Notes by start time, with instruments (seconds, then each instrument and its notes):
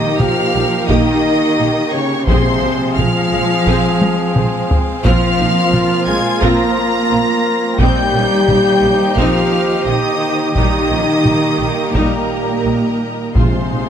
Already playing: timpani A#2, cello section D#3, trombone section A#3 G4, french horn section D#4, string section D#4 G4 A#4 G5, trumpet G4, violin section D#5 D#6
0.19 double bass section A#1, cello section F3, viola section A#3 G4, french horn section F4, violin section F5 F6, taiko mid
0.54 double bass section A#1, viola section G3 D#4
0.88 double bass section A#1, cello section D#3, viola section A#3 G4, french horn section D#4, violin section D#5 D#6, taiko
1.58 double bass section A#1, viola section A#3 G4
1.91 cello section C#3, french horn section C#4, violin section C#5 C#6
2.26 double bass section A#1, timpani A#2, cello section C3, trombone section F3 C4, string section G#3 C4 C5 F5, french horn section C4, viola section C4 G#4, trumpet G#4, violin section C5 C6, taiko
2.62 double bass section A#1, viola section A#3 G4
2.97 double bass section A#1, cello section F3, viola section C4 G#4, french horn section F4, violin section F5 F6, taiko mid
3.32 double bass section A#1, viola section G#3 F4
3.66 double bass section A#1, viola section C4 G#4, taiko
4.01 taiko high
4.35 double bass section A#1, viola section C4 G#4, taiko mid
4.71 taiko low
5.03 double bass section A#1, cello section F3, trombone section F3 A#3, viola section C4 F4, french horn section F4, trumpet F4, string section F4, violin section F5 F6, taiko
5.39 double bass section A#1, viola section A#3 D#4
5.73 double bass section A#1, viola section C4 F4, taiko mid
6.07 double bass section A#1, cello section G#3, viola section A#3 C4, french horn section G#4, violin section G#5 G#6
6.41 double bass section A#1, cello section A#3, viola section C4 F4, french horn section A#4, violin section A#5 A#6, taiko
7.10 double bass section A#1, viola section C4 F4
7.78 double bass section A#1, trombone section D#3, cello section G3, viola section C4 D#4, string section D#4 G4 C5 D#5, trumpet G4, french horn section G4, violin section G5 G6, taiko
8.13 double bass section A#1, viola section A#3 C#4
8.48 double bass section A#1, viola section C4 D#4, taiko mid
8.82 double bass section A#1, viola section G3 C4
9.16 double bass section A#1, cello section F3, viola section C4 D#4, french horn section F4, violin section F5 F6, taiko
9.85 double bass section A#1, cello section D#3, viola section C4 D#4, french horn section D#4, violin section D#5 D#6
10.54 double bass section A#1, cello section D#3, string section G3 A#4, viola section G3 D#4, trombone section A#3, french horn section D#4, violin section D#5 D#6, taiko
10.90 double bass section A#1, viola section F3 C#4
11.25 double bass section A#1, viola section G3 D#4, taiko mid
11.59 double bass section A#1, viola section D#3 A#3
11.94 double bass section A#1, cello section A#2, viola section G3 D#4, french horn section A#3, violin section A#4 A#5, taiko
12.65 double bass section A#1, viola section G3 D#4
13.35 double bass section A#1, timpani A#2, cello section C3, trombone section F3 G#3, viola section G#3 F4, string section G#3 F4 C5 F5, french horn section C4, trumpet G#4, violin section C5 C6, taiko
13.71 double bass section A#1, viola section D#4 G4